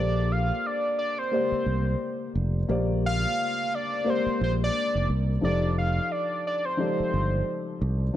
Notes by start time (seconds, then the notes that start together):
Already playing: A#1 A#3 G4 A4 C5 D5
0.32 F5
0.66 D5
0.98 D5
1.18 C5
1.31 A#3 G4 C5 D5
1.52 muted fingered electric bass stroke
1.66 C2
2.35 F1
2.68 A#1 A#3 G4 C5 D5
3.06 F5
3.75 D5
4.04 A#3 G4 C5 D5
4.10 C5
4.26 muted fingered electric bass stroke
4.41 A#1 C5
4.64 D5
4.95 F1
5.10 C2
5.41 F1 F3 D#4 G4 A4 D5
5.78 F5
6.12 D5
6.47 D5
6.65 C5
6.77 F3 D#4 G4 A4 D5
7.00 muted fingered electric bass stroke
7.14 G1
7.82 C2